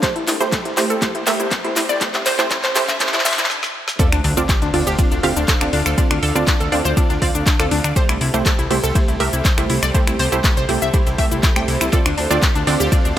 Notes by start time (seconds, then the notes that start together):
Already playing: A4, riser
0.02 A3 G4 C5, kick, clap, closed hi-hat, ride, cabasa
0.16 C2 E4, closed hi-hat
0.27 C2 E4, clap, open hi-hat, ride, cabasa
0.40 C2 A3 E4 G4 C5, snare, closed hi-hat, cabasa
0.52 A4, kick, snare, clap, closed hi-hat, ride, cabasa
0.65 C2 E4, snare, closed hi-hat
0.77 C2 A3 E4 G4 C5, clap, open hi-hat, cabasa
0.90 C2 A4, closed hi-hat, cabasa
1.02 A3 E4 G4 C5, kick, clap, closed hi-hat, ride, cabasa
1.15 C2 E4, closed hi-hat
1.27 C2 A3 G4 A#4 E5, clap, open hi-hat, ride, cabasa
1.40 C2 E4, closed hi-hat, cabasa
1.51 C5, kick, snare, clap, closed hi-hat, ride, cabasa
1.64 C2 A3 E4 G4 C5, snare, closed hi-hat
1.76 C2 E4, clap, open hi-hat, ride, cabasa
1.89 C2 D5, snare, closed hi-hat, cabasa
2.01 A3 E4 G4 C5, kick, clap, closed hi-hat, ride, cabasa
2.14 C2 E4, clap, closed hi-hat
2.25 C2 C5, clap, open hi-hat, ride, cabasa
2.39 C2 A3 E4 G4 C5, clap, closed hi-hat, cabasa
2.50 E4, kick, snare, clap, closed hi-hat, ride, cabasa
2.64 C2 C5, snare, clap, closed hi-hat
2.75 C2 A3 E4 G4 C5, clap, open hi-hat, ride, cabasa
2.88 C2 E5, kick, clap, closed hi-hat, ride, cabasa
3.00 A3 E4 G4 C5, kick, snare, clap, closed hi-hat, ride, cabasa
3.07 snare, clap, ride
3.13 C2 E4, snare, clap, closed hi-hat, ride
3.19 snare, clap, ride
3.25 C2 E5, clap, open hi-hat, cabasa
3.32 clap
3.38 C2 E4, clap, closed hi-hat, cabasa
3.44 clap
3.50 snare
3.63 snare
3.88 snare
3.99 C4 D4 F4 A4 C5 D5 F5, kick, closed hi-hat, ride, sub drop, cabasa
4.12 D2 D4, finger snap, closed hi-hat, cabasa
4.24 D2 D4, open hi-hat, ride
4.37 D2 C4 D4 F4 D5, snare, closed hi-hat, cabasa
4.49 G4, kick, snare, clap, closed hi-hat, ride, cabasa
4.62 D2 D4, snare, closed hi-hat, cabasa
4.74 D2 C4 D4 F4 D5, open hi-hat
4.87 D2 G4, closed hi-hat, ride, cabasa
4.99 C4 D4 F4 D5, kick, closed hi-hat, ride, cabasa
5.12 D2 D4, closed hi-hat, cabasa
5.23 D2 C4 F4 G4 F5, open hi-hat, ride
5.36 D2 D4, closed hi-hat, cabasa
5.48 A4, kick, snare, clap, closed hi-hat, ride, cabasa
5.61 D2 C4 D4 F4 D5, finger snap, snare, closed hi-hat, cabasa
5.73 D2 D4, open hi-hat, ride
5.85 D2 A4, finger snap, snare, cabasa
5.98 C4 D4 F4 D5, kick, closed hi-hat, ride, cabasa
6.11 D2 D4, finger snap, closed hi-hat, cabasa
6.22 D2 A4, open hi-hat, ride
6.36 D2 C4 D4 F4 D5, closed hi-hat, cabasa
6.47 D4, kick, snare, clap, closed hi-hat, ride, cabasa
6.60 D2 A4, snare, closed hi-hat, cabasa
6.72 D2 C4 D4 F4 D5, open hi-hat, ride
6.84 D2 C5, closed hi-hat, ride, cabasa
6.97 C4 D4 F4 D5, kick, closed hi-hat, ride, cabasa
7.10 D2 D4, snare, closed hi-hat, cabasa
7.22 D2 C4 F4 D5 F5, kick, open hi-hat, ride
7.35 D2 D4, closed hi-hat, cabasa
7.46 D4, kick, snare, clap, closed hi-hat, ride, cabasa
7.59 D2 C4 F4 A4 D5, finger snap, closed hi-hat, cabasa
7.71 D2 D4, snare, open hi-hat, ride
7.84 D2 D4, finger snap, cabasa
7.96 A3 G4 A4 C5, kick, closed hi-hat, ride, cabasa
8.09 C2 E4, finger snap, closed hi-hat, cabasa
8.21 C2 E4, open hi-hat, ride
8.34 C2 A3 E4 G4 C5, snare, closed hi-hat, cabasa
8.45 A4, kick, snare, clap, closed hi-hat, ride, cabasa
8.59 C2 E4, snare, closed hi-hat, cabasa
8.70 C2 A3 E4 G4 C5, open hi-hat
8.83 C2 A4, closed hi-hat, ride, cabasa
8.95 A3 E4 G4 C5, kick, closed hi-hat, ride, cabasa
9.08 C2 E4, closed hi-hat, cabasa
9.20 C2 A3 G4 A#4 E5, open hi-hat, ride
9.33 C2 E4, closed hi-hat, cabasa
9.45 C5, kick, snare, clap, closed hi-hat, ride, cabasa
9.58 C2 A3 E4 G4 C5, finger snap, snare, closed hi-hat, cabasa
9.69 C2 E4, open hi-hat, ride
9.83 C2 D5, finger snap, snare, cabasa
9.94 A3 E4 G4 C5, kick, closed hi-hat, ride, cabasa
10.07 C2 E4, finger snap, closed hi-hat, cabasa
10.19 C2 C5, open hi-hat, ride
10.32 C2 A3 E4 G4 C5, closed hi-hat, cabasa
10.44 E4, kick, snare, clap, closed hi-hat, ride, cabasa
10.57 C2 C5, snare, closed hi-hat, cabasa
10.69 C2 A3 E4 G4 C5, open hi-hat, ride
10.82 C2 E5, closed hi-hat, ride, cabasa
10.94 A3 E4 G4 C5, kick, closed hi-hat, ride, cabasa
11.07 C2 E4, snare, closed hi-hat, cabasa
11.18 C2 A3 G4 E5, kick, open hi-hat, ride
11.31 C2 E4, closed hi-hat, cabasa
11.43 E4, kick, snare, clap, closed hi-hat, ride, cabasa
11.56 C2 A3 G4 C5 G5, finger snap, closed hi-hat, cabasa
11.68 C2 E4, snare, open hi-hat, ride
11.81 C2 E4, finger snap, closed hi-hat, cabasa
11.92 C4 D4 F4 A4 D5 F5, kick, closed hi-hat, ride, cabasa
12.06 D2 D4, finger snap, closed hi-hat, cabasa
12.18 D2 D4, open hi-hat, ride
12.31 D2 C4 D4 F4 D5, snare, closed hi-hat, cabasa
12.42 G4, kick, snare, clap, closed hi-hat, ride, cabasa
12.55 D2 D4, snare, closed hi-hat, cabasa
12.67 D2 C4 D4 F4 D5, open hi-hat
12.80 D2 G4, closed hi-hat, ride, cabasa
12.92 C4 D4 F4 D5, kick, closed hi-hat, ride, cabasa
13.05 D2 D4, closed hi-hat, cabasa